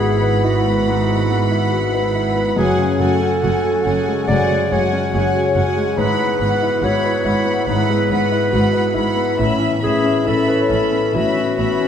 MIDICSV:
0, 0, Header, 1, 9, 480
1, 0, Start_track
1, 0, Tempo, 852273
1, 1448, Time_signature, 4, 2, 24, 8
1, 4807, Tempo, 874636
1, 6642, End_track
2, 0, Start_track
2, 0, Title_t, "Violin section"
2, 0, Program_c, 0, 48
2, 0, Note_on_c, 0, 83, 47
2, 1423, Note_off_c, 0, 83, 0
2, 1450, Note_on_c, 0, 80, 48
2, 1685, Note_off_c, 0, 80, 0
2, 1694, Note_on_c, 0, 80, 39
2, 1930, Note_off_c, 0, 80, 0
2, 1939, Note_on_c, 0, 80, 41
2, 2172, Note_off_c, 0, 80, 0
2, 2179, Note_on_c, 0, 80, 41
2, 2412, Note_off_c, 0, 80, 0
2, 2424, Note_on_c, 0, 80, 49
2, 2650, Note_off_c, 0, 80, 0
2, 2657, Note_on_c, 0, 80, 43
2, 2882, Note_off_c, 0, 80, 0
2, 2889, Note_on_c, 0, 80, 48
2, 3124, Note_off_c, 0, 80, 0
2, 3131, Note_on_c, 0, 80, 44
2, 3363, Note_off_c, 0, 80, 0
2, 3368, Note_on_c, 0, 83, 60
2, 3594, Note_off_c, 0, 83, 0
2, 3601, Note_on_c, 0, 83, 42
2, 3834, Note_off_c, 0, 83, 0
2, 3841, Note_on_c, 0, 83, 50
2, 4072, Note_off_c, 0, 83, 0
2, 4079, Note_on_c, 0, 83, 44
2, 4311, Note_off_c, 0, 83, 0
2, 4318, Note_on_c, 0, 83, 51
2, 4555, Note_off_c, 0, 83, 0
2, 4562, Note_on_c, 0, 83, 45
2, 4790, Note_off_c, 0, 83, 0
2, 4797, Note_on_c, 0, 83, 51
2, 5032, Note_off_c, 0, 83, 0
2, 5038, Note_on_c, 0, 83, 44
2, 5266, Note_off_c, 0, 83, 0
2, 5272, Note_on_c, 0, 83, 57
2, 5504, Note_off_c, 0, 83, 0
2, 5510, Note_on_c, 0, 83, 41
2, 5745, Note_off_c, 0, 83, 0
2, 5752, Note_on_c, 0, 83, 50
2, 5986, Note_off_c, 0, 83, 0
2, 5992, Note_on_c, 0, 83, 41
2, 6230, Note_off_c, 0, 83, 0
2, 6237, Note_on_c, 0, 83, 48
2, 6470, Note_off_c, 0, 83, 0
2, 6477, Note_on_c, 0, 83, 43
2, 6642, Note_off_c, 0, 83, 0
2, 6642, End_track
3, 0, Start_track
3, 0, Title_t, "Violin section"
3, 0, Program_c, 1, 48
3, 0, Note_on_c, 1, 78, 45
3, 1420, Note_off_c, 1, 78, 0
3, 1441, Note_on_c, 1, 78, 53
3, 1665, Note_off_c, 1, 78, 0
3, 1672, Note_on_c, 1, 78, 52
3, 1915, Note_off_c, 1, 78, 0
3, 1922, Note_on_c, 1, 78, 46
3, 2145, Note_off_c, 1, 78, 0
3, 2152, Note_on_c, 1, 78, 41
3, 2392, Note_off_c, 1, 78, 0
3, 2399, Note_on_c, 1, 78, 53
3, 2642, Note_off_c, 1, 78, 0
3, 2657, Note_on_c, 1, 78, 49
3, 2887, Note_off_c, 1, 78, 0
3, 2894, Note_on_c, 1, 78, 45
3, 3118, Note_off_c, 1, 78, 0
3, 3125, Note_on_c, 1, 78, 47
3, 3360, Note_off_c, 1, 78, 0
3, 3372, Note_on_c, 1, 78, 49
3, 3603, Note_off_c, 1, 78, 0
3, 3612, Note_on_c, 1, 78, 50
3, 3836, Note_off_c, 1, 78, 0
3, 3842, Note_on_c, 1, 78, 49
3, 4075, Note_off_c, 1, 78, 0
3, 4081, Note_on_c, 1, 78, 45
3, 4317, Note_off_c, 1, 78, 0
3, 4324, Note_on_c, 1, 78, 55
3, 4562, Note_off_c, 1, 78, 0
3, 4568, Note_on_c, 1, 78, 48
3, 4801, Note_off_c, 1, 78, 0
3, 4808, Note_on_c, 1, 78, 44
3, 5034, Note_off_c, 1, 78, 0
3, 5041, Note_on_c, 1, 78, 45
3, 5276, Note_off_c, 1, 78, 0
3, 5287, Note_on_c, 1, 76, 55
3, 5518, Note_off_c, 1, 76, 0
3, 5525, Note_on_c, 1, 76, 48
3, 5748, Note_off_c, 1, 76, 0
3, 5755, Note_on_c, 1, 76, 53
3, 5991, Note_off_c, 1, 76, 0
3, 5999, Note_on_c, 1, 76, 43
3, 6235, Note_off_c, 1, 76, 0
3, 6241, Note_on_c, 1, 76, 55
3, 6472, Note_off_c, 1, 76, 0
3, 6479, Note_on_c, 1, 76, 43
3, 6642, Note_off_c, 1, 76, 0
3, 6642, End_track
4, 0, Start_track
4, 0, Title_t, "Clarinet"
4, 0, Program_c, 2, 71
4, 0, Note_on_c, 2, 68, 69
4, 250, Note_on_c, 2, 66, 56
4, 259, Note_off_c, 2, 68, 0
4, 1212, Note_off_c, 2, 66, 0
4, 1452, Note_on_c, 2, 68, 71
4, 1691, Note_on_c, 2, 69, 69
4, 1700, Note_off_c, 2, 68, 0
4, 2405, Note_off_c, 2, 69, 0
4, 2408, Note_on_c, 2, 74, 82
4, 2662, Note_on_c, 2, 73, 67
4, 2670, Note_off_c, 2, 74, 0
4, 3372, Note_on_c, 2, 71, 76
4, 3381, Note_off_c, 2, 73, 0
4, 3855, Note_on_c, 2, 73, 76
4, 3863, Note_off_c, 2, 71, 0
4, 4328, Note_off_c, 2, 73, 0
4, 4331, Note_on_c, 2, 71, 77
4, 5265, Note_off_c, 2, 71, 0
4, 5521, Note_on_c, 2, 68, 75
4, 5763, Note_on_c, 2, 69, 65
4, 5771, Note_off_c, 2, 68, 0
4, 6244, Note_on_c, 2, 66, 85
4, 6252, Note_off_c, 2, 69, 0
4, 6642, Note_off_c, 2, 66, 0
4, 6642, End_track
5, 0, Start_track
5, 0, Title_t, "Harp"
5, 0, Program_c, 3, 46
5, 0, Note_on_c, 3, 44, 44
5, 0, Note_on_c, 3, 59, 37
5, 0, Note_on_c, 3, 66, 37
5, 0, Note_on_c, 3, 76, 38
5, 8, Note_on_c, 3, 71, 38
5, 162, Note_off_c, 3, 76, 0
5, 169, Note_on_c, 3, 76, 32
5, 329, Note_off_c, 3, 71, 0
5, 336, Note_on_c, 3, 71, 39
5, 489, Note_off_c, 3, 44, 0
5, 496, Note_on_c, 3, 44, 34
5, 656, Note_off_c, 3, 59, 0
5, 662, Note_on_c, 3, 59, 35
5, 818, Note_off_c, 3, 66, 0
5, 825, Note_on_c, 3, 66, 37
5, 976, Note_off_c, 3, 71, 0
5, 983, Note_on_c, 3, 71, 37
5, 1127, Note_off_c, 3, 76, 0
5, 1133, Note_on_c, 3, 76, 38
5, 1284, Note_off_c, 3, 71, 0
5, 1290, Note_on_c, 3, 71, 41
5, 1446, Note_on_c, 3, 42, 48
5, 1467, Note_off_c, 3, 71, 0
5, 1467, Note_off_c, 3, 76, 0
5, 1469, Note_off_c, 3, 44, 0
5, 1471, Note_off_c, 3, 59, 0
5, 1604, Note_on_c, 3, 54, 38
5, 1759, Note_off_c, 3, 66, 0
5, 1766, Note_on_c, 3, 66, 40
5, 1925, Note_on_c, 3, 80, 45
5, 2090, Note_on_c, 3, 85, 41
5, 2252, Note_on_c, 3, 68, 41
5, 2414, Note_on_c, 3, 49, 42
5, 2571, Note_on_c, 3, 56, 37
5, 2730, Note_off_c, 3, 66, 0
5, 2736, Note_on_c, 3, 66, 40
5, 2887, Note_off_c, 3, 68, 0
5, 2894, Note_on_c, 3, 68, 36
5, 3053, Note_on_c, 3, 73, 40
5, 3200, Note_off_c, 3, 68, 0
5, 3207, Note_on_c, 3, 68, 41
5, 3364, Note_on_c, 3, 44, 55
5, 3385, Note_off_c, 3, 85, 0
5, 3387, Note_off_c, 3, 42, 0
5, 3387, Note_off_c, 3, 49, 0
5, 3387, Note_off_c, 3, 73, 0
5, 3529, Note_on_c, 3, 59, 47
5, 3682, Note_off_c, 3, 66, 0
5, 3689, Note_on_c, 3, 66, 44
5, 3800, Note_off_c, 3, 54, 0
5, 3851, Note_on_c, 3, 71, 49
5, 4012, Note_on_c, 3, 76, 42
5, 4122, Note_off_c, 3, 80, 0
5, 4160, Note_off_c, 3, 71, 0
5, 4166, Note_on_c, 3, 71, 39
5, 4323, Note_off_c, 3, 44, 0
5, 4330, Note_on_c, 3, 44, 50
5, 4484, Note_off_c, 3, 59, 0
5, 4490, Note_on_c, 3, 59, 42
5, 4641, Note_off_c, 3, 66, 0
5, 4648, Note_on_c, 3, 66, 43
5, 4767, Note_off_c, 3, 56, 0
5, 4800, Note_off_c, 3, 71, 0
5, 4807, Note_on_c, 3, 71, 40
5, 4953, Note_off_c, 3, 76, 0
5, 4959, Note_on_c, 3, 76, 44
5, 5115, Note_off_c, 3, 71, 0
5, 5121, Note_on_c, 3, 71, 44
5, 5280, Note_on_c, 3, 45, 59
5, 5299, Note_off_c, 3, 68, 0
5, 5301, Note_off_c, 3, 66, 0
5, 5303, Note_off_c, 3, 44, 0
5, 5436, Note_off_c, 3, 59, 0
5, 5442, Note_on_c, 3, 59, 46
5, 5595, Note_on_c, 3, 64, 41
5, 5752, Note_off_c, 3, 71, 0
5, 5759, Note_on_c, 3, 71, 45
5, 5915, Note_on_c, 3, 73, 41
5, 6067, Note_off_c, 3, 71, 0
5, 6074, Note_on_c, 3, 71, 40
5, 6235, Note_on_c, 3, 52, 39
5, 6396, Note_off_c, 3, 59, 0
5, 6403, Note_on_c, 3, 59, 37
5, 6557, Note_off_c, 3, 64, 0
5, 6564, Note_on_c, 3, 64, 40
5, 6642, Note_off_c, 3, 45, 0
5, 6642, Note_off_c, 3, 52, 0
5, 6642, Note_off_c, 3, 59, 0
5, 6642, Note_off_c, 3, 64, 0
5, 6642, Note_off_c, 3, 71, 0
5, 6642, Note_off_c, 3, 73, 0
5, 6642, Note_off_c, 3, 76, 0
5, 6642, End_track
6, 0, Start_track
6, 0, Title_t, "Viola section"
6, 0, Program_c, 4, 48
6, 0, Note_on_c, 4, 64, 46
6, 1425, Note_off_c, 4, 64, 0
6, 1445, Note_on_c, 4, 66, 48
6, 1679, Note_off_c, 4, 66, 0
6, 1686, Note_on_c, 4, 66, 39
6, 1920, Note_off_c, 4, 66, 0
6, 1927, Note_on_c, 4, 66, 50
6, 2164, Note_off_c, 4, 66, 0
6, 2171, Note_on_c, 4, 66, 45
6, 2404, Note_off_c, 4, 66, 0
6, 2410, Note_on_c, 4, 66, 53
6, 2648, Note_off_c, 4, 66, 0
6, 2655, Note_on_c, 4, 66, 48
6, 2890, Note_off_c, 4, 66, 0
6, 2898, Note_on_c, 4, 66, 51
6, 3123, Note_off_c, 4, 66, 0
6, 3130, Note_on_c, 4, 66, 41
6, 3360, Note_on_c, 4, 64, 45
6, 3362, Note_off_c, 4, 66, 0
6, 3598, Note_off_c, 4, 64, 0
6, 3604, Note_on_c, 4, 64, 43
6, 3840, Note_off_c, 4, 64, 0
6, 3847, Note_on_c, 4, 64, 52
6, 4080, Note_off_c, 4, 64, 0
6, 4087, Note_on_c, 4, 64, 50
6, 4320, Note_off_c, 4, 64, 0
6, 4327, Note_on_c, 4, 64, 52
6, 4557, Note_off_c, 4, 64, 0
6, 4564, Note_on_c, 4, 64, 47
6, 4796, Note_off_c, 4, 64, 0
6, 4803, Note_on_c, 4, 64, 50
6, 5030, Note_off_c, 4, 64, 0
6, 5036, Note_on_c, 4, 64, 50
6, 5274, Note_off_c, 4, 64, 0
6, 5275, Note_on_c, 4, 61, 56
6, 5508, Note_off_c, 4, 61, 0
6, 5514, Note_on_c, 4, 61, 43
6, 5750, Note_off_c, 4, 61, 0
6, 5756, Note_on_c, 4, 61, 50
6, 5987, Note_off_c, 4, 61, 0
6, 5994, Note_on_c, 4, 61, 46
6, 6229, Note_off_c, 4, 61, 0
6, 6236, Note_on_c, 4, 61, 49
6, 6473, Note_off_c, 4, 61, 0
6, 6480, Note_on_c, 4, 61, 47
6, 6642, Note_off_c, 4, 61, 0
6, 6642, End_track
7, 0, Start_track
7, 0, Title_t, "Grand piano"
7, 0, Program_c, 5, 0
7, 0, Control_c, 5, 64, 127
7, 0, Note_on_c, 5, 44, 42
7, 0, Note_on_c, 5, 56, 30
7, 0, Note_on_c, 5, 59, 27
7, 0, Note_on_c, 5, 64, 29
7, 5, Note_on_c, 5, 66, 37
7, 78, Note_off_c, 5, 64, 0
7, 122, Note_on_c, 5, 71, 36
7, 199, Note_off_c, 5, 66, 0
7, 248, Note_on_c, 5, 64, 36
7, 319, Note_off_c, 5, 71, 0
7, 369, Note_off_c, 5, 59, 0
7, 369, Note_on_c, 5, 59, 39
7, 443, Note_off_c, 5, 64, 0
7, 470, Note_off_c, 5, 44, 0
7, 495, Note_on_c, 5, 44, 42
7, 565, Note_off_c, 5, 59, 0
7, 614, Note_off_c, 5, 56, 0
7, 614, Note_on_c, 5, 56, 27
7, 733, Note_on_c, 5, 59, 33
7, 808, Note_off_c, 5, 56, 0
7, 850, Note_on_c, 5, 64, 36
7, 926, Note_off_c, 5, 59, 0
7, 970, Note_on_c, 5, 66, 35
7, 1043, Note_off_c, 5, 64, 0
7, 1092, Note_on_c, 5, 71, 35
7, 1161, Note_off_c, 5, 66, 0
7, 1209, Note_on_c, 5, 64, 35
7, 1281, Note_off_c, 5, 71, 0
7, 1325, Note_on_c, 5, 59, 36
7, 1400, Note_off_c, 5, 64, 0
7, 1427, Note_off_c, 5, 44, 0
7, 1444, Note_on_c, 5, 42, 47
7, 1446, Note_off_c, 5, 59, 0
7, 1459, Control_c, 5, 64, 0
7, 1540, Control_c, 5, 64, 127
7, 1565, Note_on_c, 5, 49, 36
7, 1685, Note_on_c, 5, 57, 30
7, 1761, Note_off_c, 5, 49, 0
7, 1810, Note_on_c, 5, 61, 37
7, 1882, Note_off_c, 5, 57, 0
7, 1934, Note_on_c, 5, 66, 41
7, 2006, Note_off_c, 5, 61, 0
7, 2052, Note_on_c, 5, 69, 42
7, 2127, Note_off_c, 5, 66, 0
7, 2175, Note_on_c, 5, 61, 39
7, 2246, Note_off_c, 5, 69, 0
7, 2300, Note_on_c, 5, 56, 37
7, 2367, Note_off_c, 5, 61, 0
7, 2390, Note_off_c, 5, 42, 0
7, 2413, Note_on_c, 5, 42, 44
7, 2489, Note_off_c, 5, 56, 0
7, 2539, Note_on_c, 5, 49, 32
7, 2657, Note_on_c, 5, 56, 36
7, 2729, Note_off_c, 5, 49, 0
7, 2777, Note_on_c, 5, 61, 39
7, 2848, Note_off_c, 5, 56, 0
7, 2895, Note_on_c, 5, 66, 43
7, 2967, Note_off_c, 5, 61, 0
7, 3018, Note_on_c, 5, 68, 33
7, 3085, Note_off_c, 5, 66, 0
7, 3132, Note_on_c, 5, 61, 38
7, 3205, Note_off_c, 5, 68, 0
7, 3251, Note_on_c, 5, 56, 43
7, 3321, Note_off_c, 5, 61, 0
7, 3345, Note_off_c, 5, 42, 0
7, 3364, Note_on_c, 5, 44, 57
7, 3369, Note_off_c, 5, 56, 0
7, 3379, Control_c, 5, 64, 0
7, 3459, Control_c, 5, 64, 127
7, 3489, Note_on_c, 5, 56, 37
7, 3610, Note_on_c, 5, 59, 35
7, 3679, Note_off_c, 5, 56, 0
7, 3729, Note_on_c, 5, 64, 36
7, 3800, Note_off_c, 5, 59, 0
7, 3841, Note_on_c, 5, 66, 43
7, 3920, Note_off_c, 5, 64, 0
7, 3968, Note_on_c, 5, 71, 42
7, 4036, Note_off_c, 5, 66, 0
7, 4078, Note_on_c, 5, 64, 39
7, 4159, Note_off_c, 5, 71, 0
7, 4199, Note_on_c, 5, 59, 40
7, 4275, Note_off_c, 5, 64, 0
7, 4303, Note_off_c, 5, 44, 0
7, 4322, Note_on_c, 5, 44, 46
7, 4396, Note_off_c, 5, 59, 0
7, 4449, Note_on_c, 5, 56, 32
7, 4564, Note_on_c, 5, 59, 41
7, 4641, Note_off_c, 5, 56, 0
7, 4683, Note_on_c, 5, 64, 39
7, 4758, Note_off_c, 5, 59, 0
7, 4800, Note_on_c, 5, 66, 41
7, 4876, Note_off_c, 5, 64, 0
7, 4914, Note_on_c, 5, 71, 38
7, 4992, Note_off_c, 5, 66, 0
7, 5028, Note_on_c, 5, 64, 38
7, 5109, Note_off_c, 5, 71, 0
7, 5149, Note_on_c, 5, 59, 46
7, 5227, Note_off_c, 5, 64, 0
7, 5257, Note_off_c, 5, 44, 0
7, 5264, Note_on_c, 5, 45, 56
7, 5275, Note_off_c, 5, 59, 0
7, 5292, Control_c, 5, 64, 0
7, 5383, Control_c, 5, 64, 127
7, 5386, Note_on_c, 5, 52, 34
7, 5507, Note_on_c, 5, 59, 35
7, 5584, Note_off_c, 5, 52, 0
7, 5633, Note_on_c, 5, 61, 40
7, 5703, Note_off_c, 5, 59, 0
7, 5748, Note_on_c, 5, 64, 43
7, 5826, Note_off_c, 5, 61, 0
7, 5873, Note_on_c, 5, 71, 42
7, 5944, Note_off_c, 5, 64, 0
7, 5991, Note_on_c, 5, 61, 40
7, 6067, Note_off_c, 5, 71, 0
7, 6115, Note_on_c, 5, 59, 37
7, 6188, Note_off_c, 5, 61, 0
7, 6208, Note_off_c, 5, 45, 0
7, 6237, Note_on_c, 5, 45, 44
7, 6311, Note_off_c, 5, 59, 0
7, 6355, Note_on_c, 5, 52, 31
7, 6480, Note_on_c, 5, 59, 34
7, 6555, Note_off_c, 5, 52, 0
7, 6605, Note_on_c, 5, 61, 38
7, 6642, Note_off_c, 5, 45, 0
7, 6642, Note_off_c, 5, 59, 0
7, 6642, Note_off_c, 5, 61, 0
7, 6642, End_track
8, 0, Start_track
8, 0, Title_t, "Cello section"
8, 0, Program_c, 6, 48
8, 0, Note_on_c, 6, 44, 47
8, 1425, Note_off_c, 6, 44, 0
8, 1450, Note_on_c, 6, 42, 52
8, 1495, Note_off_c, 6, 42, 0
8, 1687, Note_on_c, 6, 42, 46
8, 1732, Note_off_c, 6, 42, 0
8, 1933, Note_on_c, 6, 42, 51
8, 1978, Note_off_c, 6, 42, 0
8, 2178, Note_on_c, 6, 42, 50
8, 2223, Note_off_c, 6, 42, 0
8, 2416, Note_on_c, 6, 42, 53
8, 2461, Note_off_c, 6, 42, 0
8, 2653, Note_on_c, 6, 42, 55
8, 2698, Note_off_c, 6, 42, 0
8, 2899, Note_on_c, 6, 42, 63
8, 2944, Note_off_c, 6, 42, 0
8, 3135, Note_on_c, 6, 42, 44
8, 3180, Note_off_c, 6, 42, 0
8, 3371, Note_on_c, 6, 44, 59
8, 3416, Note_off_c, 6, 44, 0
8, 3610, Note_on_c, 6, 44, 46
8, 3655, Note_off_c, 6, 44, 0
8, 3844, Note_on_c, 6, 44, 52
8, 3889, Note_off_c, 6, 44, 0
8, 4087, Note_on_c, 6, 44, 52
8, 4132, Note_off_c, 6, 44, 0
8, 4332, Note_on_c, 6, 44, 57
8, 4377, Note_off_c, 6, 44, 0
8, 4573, Note_on_c, 6, 44, 54
8, 4618, Note_off_c, 6, 44, 0
8, 4810, Note_on_c, 6, 44, 65
8, 4854, Note_off_c, 6, 44, 0
8, 5041, Note_on_c, 6, 44, 48
8, 5085, Note_off_c, 6, 44, 0
8, 5280, Note_on_c, 6, 45, 53
8, 5323, Note_off_c, 6, 45, 0
8, 5521, Note_on_c, 6, 45, 48
8, 5565, Note_off_c, 6, 45, 0
8, 5760, Note_on_c, 6, 45, 51
8, 5804, Note_off_c, 6, 45, 0
8, 5995, Note_on_c, 6, 45, 50
8, 6039, Note_off_c, 6, 45, 0
8, 6235, Note_on_c, 6, 45, 53
8, 6279, Note_off_c, 6, 45, 0
8, 6479, Note_on_c, 6, 45, 53
8, 6523, Note_off_c, 6, 45, 0
8, 6642, End_track
9, 0, Start_track
9, 0, Title_t, "Double bass section"
9, 0, Program_c, 7, 48
9, 0, Note_on_c, 7, 32, 50
9, 1427, Note_off_c, 7, 32, 0
9, 1453, Note_on_c, 7, 30, 54
9, 1498, Note_off_c, 7, 30, 0
9, 1693, Note_on_c, 7, 30, 44
9, 1738, Note_off_c, 7, 30, 0
9, 1937, Note_on_c, 7, 30, 53
9, 1982, Note_off_c, 7, 30, 0
9, 2178, Note_on_c, 7, 30, 47
9, 2223, Note_off_c, 7, 30, 0
9, 2412, Note_on_c, 7, 30, 56
9, 2457, Note_off_c, 7, 30, 0
9, 2660, Note_on_c, 7, 30, 44
9, 2705, Note_off_c, 7, 30, 0
9, 2895, Note_on_c, 7, 30, 59
9, 2940, Note_off_c, 7, 30, 0
9, 3135, Note_on_c, 7, 30, 51
9, 3180, Note_off_c, 7, 30, 0
9, 3367, Note_on_c, 7, 32, 57
9, 3412, Note_off_c, 7, 32, 0
9, 3608, Note_on_c, 7, 32, 43
9, 3653, Note_off_c, 7, 32, 0
9, 3843, Note_on_c, 7, 32, 53
9, 3888, Note_off_c, 7, 32, 0
9, 4082, Note_on_c, 7, 32, 47
9, 4127, Note_off_c, 7, 32, 0
9, 4325, Note_on_c, 7, 32, 57
9, 4370, Note_off_c, 7, 32, 0
9, 4564, Note_on_c, 7, 32, 50
9, 4609, Note_off_c, 7, 32, 0
9, 4808, Note_on_c, 7, 32, 59
9, 4852, Note_off_c, 7, 32, 0
9, 5044, Note_on_c, 7, 32, 50
9, 5087, Note_off_c, 7, 32, 0
9, 5286, Note_on_c, 7, 33, 55
9, 5330, Note_off_c, 7, 33, 0
9, 5527, Note_on_c, 7, 33, 49
9, 5571, Note_off_c, 7, 33, 0
9, 5761, Note_on_c, 7, 33, 44
9, 5805, Note_off_c, 7, 33, 0
9, 5999, Note_on_c, 7, 33, 44
9, 6042, Note_off_c, 7, 33, 0
9, 6239, Note_on_c, 7, 33, 55
9, 6283, Note_off_c, 7, 33, 0
9, 6486, Note_on_c, 7, 33, 48
9, 6530, Note_off_c, 7, 33, 0
9, 6642, End_track
0, 0, End_of_file